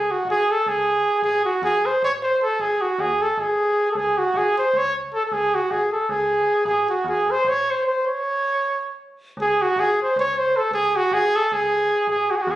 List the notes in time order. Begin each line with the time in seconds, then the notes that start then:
Already playing: G#4
0.11 F#4
0.25 G#1
0.31 G#4
0.51 A4
0.66 C#2 G#4
1.22 A1 G#4
1.45 F#4
1.62 E2 G#4
1.86 C5
2.03 A1 C#5
2.22 C5
2.42 A4
2.59 G#1 G#4
2.81 F#4
2.99 D#2 G#4
3.22 A4
3.37 G#1 G#4
3.91 C#2 A4
3.97 G#4
4.18 F#4
4.34 G#1 G#4
4.58 C5
4.74 C#2 C#5
5.14 A4
5.26 A4
5.32 C#2 G#4
5.55 F#4
5.71 G#1 G#4
5.92 A4
6.09 C#2 G#4
6.65 A1 G#4
6.90 F#4
7.05 E2 G#4
7.31 C5
7.44 A1
7.49 C#5
7.70 C5
7.87 C5
8.07 C#5
9.37 C#2 G#4
9.62 F#4
9.76 G#1 G#4
10.03 C5
10.16 C#2 C#5
10.38 C5
10.57 A4
10.71 C#2 G#4
10.96 F#4
11.11 G#1 G#4
11.36 A4
11.52 C#2 G#4
12.07 A1 G#4
12.31 F#4
12.36 G#4
12.42 F#4
12.47 E2
12.51 G#4